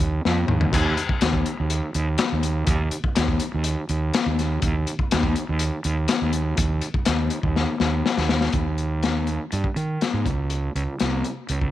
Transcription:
0.00 0.20 D#2 medium
0.00 closed hi-hat medium
0.25 0.47 F2 medium
0.25 snare medium
0.48 0.70 D#2 medium
0.48 mid tom medium
0.61 floor tom medium
0.73 0.94 D#2 medium
0.73 kick loud
0.73 closed hi-hat medium
0.73 crash medium
0.97 closed hi-hat medium
1.09 kick medium
1.21 1.42 D#2 medium
1.21 snare loud
1.21 closed hi-hat medium
1.33 kick medium
1.46 closed hi-hat medium
1.60 1.80 D#2 medium
1.70 closed hi-hat medium
1.94 2.15 D#2 medium
1.94 closed hi-hat medium
2.18 snare loud
2.18 closed hi-hat medium
2.32 2.63 D#2 medium
2.43 closed hi-hat medium
2.67 2.88 D#2 medium
2.67 kick loud
2.67 closed hi-hat medium
2.91 closed hi-hat medium
3.04 kick medium
3.16 3.38 D#2 medium
3.16 snare loud
3.16 closed hi-hat loud
3.28 kick medium
3.40 closed hi-hat medium
3.54 3.74 D#2 medium
3.64 closed hi-hat medium
3.89 4.10 D#2 medium
3.89 closed hi-hat medium
4.14 snare loud
4.14 closed hi-hat medium
4.26 4.57 D#2 medium
4.39 snare soft
4.39 closed hi-hat medium
4.62 4.84 D#2 medium
4.62 kick loud
4.62 closed hi-hat medium
4.87 closed hi-hat medium
4.99 kick medium
5.11 5.33 D#2 loud
5.11 snare loud
5.11 closed hi-hat medium
5.23 kick medium
5.36 closed hi-hat medium
5.49 5.69 D#2 medium
5.59 closed hi-hat medium
5.84 6.05 D#2 medium
5.84 closed hi-hat medium
6.08 snare loud
6.08 closed hi-hat medium
6.22 6.53 D#2 medium
6.33 closed hi-hat medium
6.57 6.79 D#2 medium
6.57 kick loud
6.57 closed hi-hat medium
6.82 closed hi-hat medium
6.94 kick medium
7.05 7.28 D#2 medium
7.05 snare loud
7.05 closed hi-hat medium
7.30 closed hi-hat medium
7.43 7.64 D#2 medium
7.43 kick medium
7.56 snare medium
7.80 8.01 D#2 medium
7.80 snare medium
8.06 snare medium
8.17 8.49 D#2 medium
8.17 snare medium
8.29 snare medium
8.41 snare medium
8.52 9.37 D#2 medium
8.52 kick medium
8.52 closed hi-hat medium
8.78 closed hi-hat soft
9.03 snare medium
9.03 closed hi-hat medium
9.27 closed hi-hat soft
9.52 9.63 G2 medium
9.52 closed hi-hat medium
9.64 kick medium
9.76 9.97 D#3 medium
9.76 closed hi-hat soft
10.01 snare medium
10.01 closed hi-hat medium
10.13 10.24 G#2 medium
10.26 10.68 C#2 medium
10.26 kick medium
10.26 closed hi-hat medium
10.50 closed hi-hat medium
10.75 10.85 C#2 medium
10.75 closed hi-hat soft
11.00 11.21 C2 medium
11.00 snare medium
11.00 closed hi-hat medium
11.24 closed hi-hat medium
11.49 11.70 C#2 medium
11.49 closed hi-hat medium
11.61 kick medium

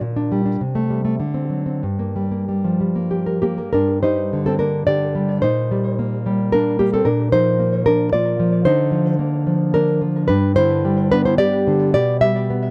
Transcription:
0.01 0.58 A#2 medium
0.16 0.44 D4 medium
0.32 0.61 G3 medium
0.46 0.60 D4 soft
0.61 1.18 C3 medium
0.75 1.03 A3 soft
0.90 1.20 G3 soft
1.05 1.19 A3 soft
1.20 1.82 D3 medium
1.34 1.65 C4 soft
1.50 1.83 F#3 soft
1.66 1.83 C4 soft
1.83 3.70 G2 medium
1.99 2.30 A#3 soft
2.16 2.47 G3 soft
2.31 2.80 A#3 soft
2.49 2.79 G3 soft
2.64 3.59 F3 soft
2.80 3.41 G3 soft
2.95 3.42 A#3 soft
3.11 3.41 G4 soft
3.26 3.57 A#4 soft
3.42 3.72 A#3 soft
3.42 3.74 G4 medium
3.58 3.71 A#4 soft
3.73 5.38 G2 medium
3.73 4.01 D4 medium
3.73 4.01 A#4 medium
4.03 4.59 G3 soft
4.03 4.43 D#4 medium
4.03 4.44 C5 medium
4.33 4.86 D3 soft
4.46 4.59 C4 medium
4.46 4.58 A4 medium
4.59 5.42 A#3 soft
4.59 4.85 D4 medium
4.59 4.85 A#4 medium
4.87 5.43 D3 soft
4.87 5.39 G4 medium
4.87 5.40 D5 medium
5.15 5.43 G3 soft
5.42 7.03 A#2 medium
5.42 6.50 D#4 medium
5.42 6.49 C5 loud
5.71 6.25 G3 soft
5.99 6.52 A#3 soft
6.26 6.79 G3 medium
6.52 6.79 A#3 medium
6.52 6.79 D4 medium
6.52 6.79 A#4 medium
6.79 7.06 G3 soft
6.79 6.93 A#3 medium
6.79 6.93 G4 medium
6.94 7.07 C4 medium
6.94 7.07 A4 medium
7.05 8.62 A#2 medium
7.05 7.31 D4 medium
7.05 7.32 A#4 loud
7.32 7.86 F3 medium
7.32 7.84 D#4 medium
7.32 7.85 C5 loud
7.59 8.12 A#3 soft
7.86 8.38 F3 medium
7.86 8.12 D4 medium
7.86 8.12 A#4 medium
8.13 8.65 A#3 medium
8.13 8.63 F4 medium
8.13 8.64 D5 loud
8.40 8.66 F3 medium
8.65 10.26 D3 medium
8.65 9.70 D#4 medium
8.65 9.70 C5 loud
8.91 9.19 F3 medium
9.19 9.73 A#3 medium
9.47 10.00 F3 medium
9.74 10.29 A#3 medium
9.74 10.00 D4 medium
9.74 10.01 A#4 medium
10.01 10.30 F3 medium
10.28 11.90 G2 medium
10.28 10.55 D4 medium
10.28 10.55 B4 loud
10.56 11.39 D3 medium
10.56 11.09 E4 medium
10.56 11.09 C5 loud
10.85 11.38 G3 medium
11.12 11.94 B3 medium
11.12 11.25 D4 medium
11.12 11.25 B4 loud
11.25 11.39 E4 medium
11.25 11.38 C5 loud
11.38 11.94 G3 medium
11.38 11.90 G4 medium
11.38 11.91 D5 loud
11.67 11.95 D3 medium
11.94 12.71 B2 medium
11.94 12.20 G4 medium
11.94 12.21 D5 loud
12.21 12.71 G3 medium
12.21 12.71 G4 medium
12.21 12.71 E5 loud
12.50 12.71 B3 medium

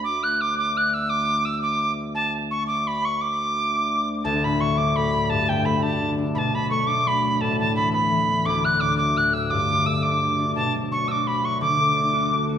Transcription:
0.04 4.23 D2 medium
0.04 0.24 D6 loud
0.23 0.42 F#6 medium
0.41 0.57 D6 medium
0.58 0.78 D6 medium
0.77 0.95 F#6 medium
0.94 1.11 E6 medium
1.09 1.46 D6 loud
1.45 1.61 E6 medium
1.62 1.92 D6 medium
2.14 2.32 A5 medium
2.51 2.66 C#6 medium
2.67 2.88 D6 medium
2.87 3.06 B5 medium
3.05 3.22 C#6 medium
3.21 4.09 D6 medium
4.24 8.43 D2 medium
4.24 5.35 D2 medium
4.24 4.45 A5 medium
4.44 4.65 A2 soft
4.44 4.62 B5 medium
4.60 5.00 D3 soft
4.60 4.79 C#6 medium
4.77 5.12 F#3 soft
4.77 4.97 D6 medium
4.96 5.35 A2 soft
4.96 5.31 B5 medium
5.13 5.35 F#3 medium
5.29 6.40 G2 medium
5.29 5.50 A5 loud
5.49 6.01 D3 soft
5.49 5.66 G5 medium
5.65 6.70 A3 medium
5.65 5.84 B5 medium
5.82 6.18 D4 medium
5.82 6.11 A5 medium
6.02 6.40 D3 soft
6.18 6.87 D4 soft
6.35 7.45 B2 medium
6.35 6.56 A5 medium
6.35 6.39 B5 medium
6.54 7.04 F#3 soft
6.54 6.70 B5 medium
6.70 7.75 A3 soft
6.70 6.88 C#6 medium
6.87 7.23 D4 soft
6.87 7.08 D6 medium
7.06 7.45 F#3 soft
7.06 7.42 B5 medium
7.23 10.03 D4 soft
7.41 8.50 A2 medium
7.41 7.59 A5 loud
7.59 8.10 E3 soft
7.59 7.75 A5 medium
7.76 9.85 A3 medium
7.76 7.91 B5 medium
7.92 8.27 B3 medium
7.92 8.47 B5 medium
8.11 8.50 E3 soft
8.28 11.38 B3 soft
8.44 12.58 D2 medium
8.44 9.55 D2 medium
8.44 8.66 D6 loud
8.64 8.85 A2 soft
8.64 8.82 F#6 loud
8.80 9.20 D3 soft
8.80 8.97 D6 loud
8.97 9.32 F#3 medium
8.97 9.18 D6 loud
9.17 9.55 A2 soft
9.17 9.35 F#6 medium
9.33 9.55 F#3 medium
9.33 9.52 E6 medium
9.50 10.60 G2 medium
9.50 9.87 D6 loud
9.70 10.21 D3 soft
9.86 11.80 A3 medium
9.86 10.04 E6 medium
10.02 10.38 D4 soft
10.02 10.54 D6 medium
10.22 10.60 D3 soft
10.39 10.91 D4 soft
10.55 11.65 B2 medium
10.55 10.73 A5 loud
10.75 11.25 F#3 soft
10.92 11.96 D4 medium
10.92 11.09 C#6 medium
11.08 11.43 F#4 medium
11.08 11.28 D6 medium
11.08 11.12 E6 medium
11.26 11.65 F#3 soft
11.26 11.46 B5 medium
11.44 12.13 F#4 soft
11.44 11.60 C#6 medium
11.61 12.58 D3 medium
11.61 12.45 D6 medium
11.80 12.32 A3 soft
11.96 12.58 D4 medium
12.13 12.49 F#4 medium
12.33 12.58 A3 soft
12.49 12.58 F#4 soft

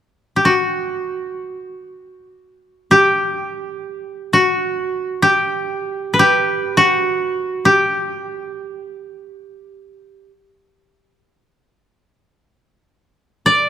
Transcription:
0.36 0.51 G4 soft
0.45 2.90 F#4 soft
2.91 4.39 G4 medium
4.33 5.28 F#4 medium
5.22 6.19 G4 medium
6.14 7.91 B4 soft
6.19 6.83 G4 medium
6.77 7.71 F#4 medium
7.65 10.30 G4 medium
13.46 13.69 D5 medium

